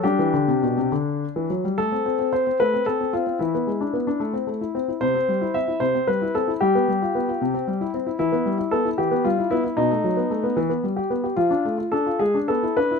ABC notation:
X:1
M:6/8
L:1/16
Q:3/8=75
K:G
V:1 name="Grand piano"
[DG]8- [DG]2 z2 | [K:Am] A4 c2 B2 A2 F2 | E8- E2 z2 | c4 e2 c2 B2 A2 |
G8- G2 z2 | E4 A2 G2 F2 E2 | ^D8- D2 z2 | F4 A2 ^G2 A2 B2 |]
V:2 name="Grand piano"
G, E, D, C, B,, C, D,3 E, F, G, | [K:Am] A, C C C C C A, C C C C C | E, B, ^G, D B, D A, C A, E C E | C, C G, E C E C, C G, E C E |
G, B, G, F B, F C, C G, E C E | E, B, G, E B, E E, B, G, E B, z | B,, A, ^F, B, A, B, E, B, G, G B, G | F, D A, F D F ^G, D B, E D E |]